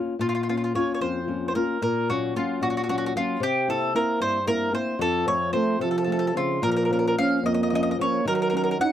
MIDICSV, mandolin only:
0, 0, Header, 1, 2, 480
1, 0, Start_track
1, 0, Key_signature, -5, "minor"
1, 0, Tempo, 537153
1, 176, Time_signature, 6, 3, 24, 8
1, 7971, End_track
2, 0, Start_track
2, 0, Title_t, "Mandolin"
2, 0, Program_c, 0, 25
2, 185, Note_on_c, 0, 65, 66
2, 247, Note_off_c, 0, 65, 0
2, 258, Note_on_c, 0, 65, 50
2, 300, Note_off_c, 0, 65, 0
2, 311, Note_on_c, 0, 65, 49
2, 375, Note_off_c, 0, 65, 0
2, 386, Note_on_c, 0, 65, 46
2, 431, Note_off_c, 0, 65, 0
2, 442, Note_on_c, 0, 65, 49
2, 502, Note_off_c, 0, 65, 0
2, 513, Note_on_c, 0, 65, 40
2, 560, Note_off_c, 0, 65, 0
2, 571, Note_on_c, 0, 65, 45
2, 640, Note_off_c, 0, 65, 0
2, 673, Note_on_c, 0, 73, 60
2, 833, Note_off_c, 0, 73, 0
2, 844, Note_on_c, 0, 73, 48
2, 902, Note_off_c, 0, 73, 0
2, 906, Note_on_c, 0, 72, 62
2, 1313, Note_off_c, 0, 72, 0
2, 1323, Note_on_c, 0, 72, 52
2, 1382, Note_off_c, 0, 72, 0
2, 1386, Note_on_c, 0, 70, 62
2, 1606, Note_off_c, 0, 70, 0
2, 1630, Note_on_c, 0, 70, 77
2, 1854, Note_off_c, 0, 70, 0
2, 1874, Note_on_c, 0, 66, 63
2, 2089, Note_off_c, 0, 66, 0
2, 2113, Note_on_c, 0, 65, 62
2, 2325, Note_off_c, 0, 65, 0
2, 2347, Note_on_c, 0, 66, 71
2, 2403, Note_off_c, 0, 66, 0
2, 2413, Note_on_c, 0, 66, 47
2, 2465, Note_off_c, 0, 66, 0
2, 2476, Note_on_c, 0, 66, 54
2, 2523, Note_off_c, 0, 66, 0
2, 2534, Note_on_c, 0, 66, 48
2, 2575, Note_off_c, 0, 66, 0
2, 2586, Note_on_c, 0, 66, 68
2, 2650, Note_off_c, 0, 66, 0
2, 2661, Note_on_c, 0, 66, 59
2, 2719, Note_off_c, 0, 66, 0
2, 2738, Note_on_c, 0, 66, 58
2, 2789, Note_off_c, 0, 66, 0
2, 2831, Note_on_c, 0, 65, 73
2, 3039, Note_off_c, 0, 65, 0
2, 3066, Note_on_c, 0, 67, 85
2, 3282, Note_off_c, 0, 67, 0
2, 3305, Note_on_c, 0, 69, 70
2, 3515, Note_off_c, 0, 69, 0
2, 3536, Note_on_c, 0, 70, 74
2, 3748, Note_off_c, 0, 70, 0
2, 3767, Note_on_c, 0, 72, 85
2, 3995, Note_off_c, 0, 72, 0
2, 3999, Note_on_c, 0, 70, 88
2, 4237, Note_off_c, 0, 70, 0
2, 4240, Note_on_c, 0, 72, 70
2, 4459, Note_off_c, 0, 72, 0
2, 4481, Note_on_c, 0, 69, 82
2, 4707, Note_off_c, 0, 69, 0
2, 4716, Note_on_c, 0, 73, 77
2, 4936, Note_off_c, 0, 73, 0
2, 4940, Note_on_c, 0, 72, 73
2, 5171, Note_off_c, 0, 72, 0
2, 5194, Note_on_c, 0, 69, 61
2, 5258, Note_off_c, 0, 69, 0
2, 5280, Note_on_c, 0, 69, 50
2, 5330, Note_off_c, 0, 69, 0
2, 5341, Note_on_c, 0, 69, 60
2, 5389, Note_off_c, 0, 69, 0
2, 5400, Note_on_c, 0, 69, 42
2, 5462, Note_off_c, 0, 69, 0
2, 5471, Note_on_c, 0, 69, 62
2, 5521, Note_off_c, 0, 69, 0
2, 5532, Note_on_c, 0, 69, 59
2, 5592, Note_off_c, 0, 69, 0
2, 5605, Note_on_c, 0, 69, 54
2, 5661, Note_off_c, 0, 69, 0
2, 5692, Note_on_c, 0, 65, 62
2, 5913, Note_off_c, 0, 65, 0
2, 5924, Note_on_c, 0, 70, 83
2, 5988, Note_off_c, 0, 70, 0
2, 6001, Note_on_c, 0, 70, 57
2, 6034, Note_off_c, 0, 70, 0
2, 6045, Note_on_c, 0, 70, 68
2, 6111, Note_off_c, 0, 70, 0
2, 6121, Note_on_c, 0, 70, 46
2, 6179, Note_off_c, 0, 70, 0
2, 6190, Note_on_c, 0, 70, 52
2, 6235, Note_off_c, 0, 70, 0
2, 6246, Note_on_c, 0, 70, 44
2, 6312, Note_off_c, 0, 70, 0
2, 6323, Note_on_c, 0, 70, 64
2, 6383, Note_off_c, 0, 70, 0
2, 6420, Note_on_c, 0, 77, 81
2, 6663, Note_off_c, 0, 77, 0
2, 6665, Note_on_c, 0, 75, 76
2, 6721, Note_off_c, 0, 75, 0
2, 6741, Note_on_c, 0, 75, 59
2, 6793, Note_off_c, 0, 75, 0
2, 6818, Note_on_c, 0, 75, 58
2, 6865, Note_off_c, 0, 75, 0
2, 6882, Note_on_c, 0, 75, 48
2, 6918, Note_off_c, 0, 75, 0
2, 6928, Note_on_c, 0, 75, 80
2, 6983, Note_off_c, 0, 75, 0
2, 6995, Note_on_c, 0, 75, 68
2, 7049, Note_off_c, 0, 75, 0
2, 7069, Note_on_c, 0, 75, 62
2, 7118, Note_off_c, 0, 75, 0
2, 7161, Note_on_c, 0, 73, 82
2, 7391, Note_off_c, 0, 73, 0
2, 7395, Note_on_c, 0, 70, 86
2, 7446, Note_off_c, 0, 70, 0
2, 7462, Note_on_c, 0, 70, 58
2, 7512, Note_off_c, 0, 70, 0
2, 7523, Note_on_c, 0, 70, 59
2, 7576, Note_off_c, 0, 70, 0
2, 7593, Note_on_c, 0, 70, 57
2, 7643, Note_off_c, 0, 70, 0
2, 7655, Note_on_c, 0, 70, 60
2, 7705, Note_off_c, 0, 70, 0
2, 7717, Note_on_c, 0, 70, 51
2, 7768, Note_off_c, 0, 70, 0
2, 7784, Note_on_c, 0, 70, 59
2, 7834, Note_off_c, 0, 70, 0
2, 7872, Note_on_c, 0, 78, 87
2, 7971, Note_off_c, 0, 78, 0
2, 7971, End_track
0, 0, End_of_file